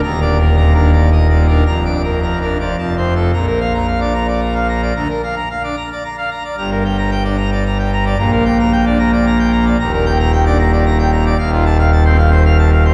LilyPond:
<<
  \new Staff \with { instrumentName = "Pipe organ" } { \time 3/4 \key bes \major \tempo 4 = 111 << { bes''8 r2 r8 | bes''8 r4. a''8 r8 | bes''16 r2 r8. | bes''16 r2 r8. |
bes''16 r2 r8. | bes''16 r2 r8. | bes''16 r2 r8. | r8 a''16 r2 r16 | } \\ { \tuplet 3/2 { r8 d''8 bes'8 bes''8 bes'8 d''8 ees''8 d''8 bes'8 } | \tuplet 3/2 { r8 d''8 bes'8 bes''8 bes'8 d''8 r8 c''8 a'8 } | r16 bes'16 f''16 bes''16 f''16 d''16 bes''16 d''16 bes''16 f''16 bes''16 d''16 | r16 bes'16 f''16 bes''16 f''16 d''16 bes''16 d''16 bes''16 f''16 bes''16 d''16 |
r16 bes'16 g''16 bes''16 g''16 d''16 bes''16 d''16 bes''16 g''16 bes''16 d''16 | r16 bes'16 g''16 bes''16 g''16 d''16 bes''16 d''16 bes''16 g''16 bes''16 d''16 | r16 bes'16 g''16 bes''16 g''16 d''16 bes''16 d''16 bes''16 g''16 bes''16 d''16 | f''16 f'16 r16 f''16 a''16 c''16 f''16 c''16 f''16 a''16 f''16 c''16 | } >> }
  \new Staff \with { instrumentName = "Pipe organ" } { \clef bass \time 3/4 \key bes \major << { \tuplet 3/2 { ees,8 d'8 r8 bes,8 d'8 bes,8 r8 bes,8 d'8 } | \tuplet 3/2 { f,8 d'8 r8 f8 d'8 f8 f,8 c'8 r8 } | bes,4~ bes,16 d'16 r4. | d16 r4 d'16 r4. |
g,4~ g,16 d'16 r4. | bes,4~ bes,16 d'16 r4. | ees,4~ ees,16 d'16 r4. | ees,4~ ees,16 c'16 r4. | } \\ { ees,,2. | f,,2 f,,4 | bes,,2. | d,16 r2 r8. |
g,,2. | bes,,2. | ees,,2. | ees,,2. | } >> }
>>